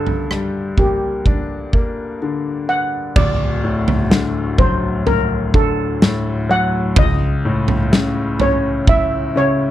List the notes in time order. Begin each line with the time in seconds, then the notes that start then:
Already playing: G2 D3 A4
0.07 floor tom
0.31 G3, cross-stick
0.78 A#3 G4, kick, floor tom
1.26 D4, kick, floor tom
1.73 A#3, kick
2.22 D3
2.69 F#5
3.16 D1 D2 D5, kick, floor tom, crash
3.64 A2
3.88 floor tom
4.10 D3, snare
4.58 F#3 C5, kick, floor tom
5.07 A#4, floor tom
5.54 D3 A4, kick
6.02 A2, snare
6.49 F#3 F#5
6.96 C#2 D#5, kick, floor tom
7.45 A2
7.68 floor tom
7.92 C#3, snare
8.40 C#4 C#5, floor tom
8.87 E4 E5, kick, floor tom
9.36 C#3 C#5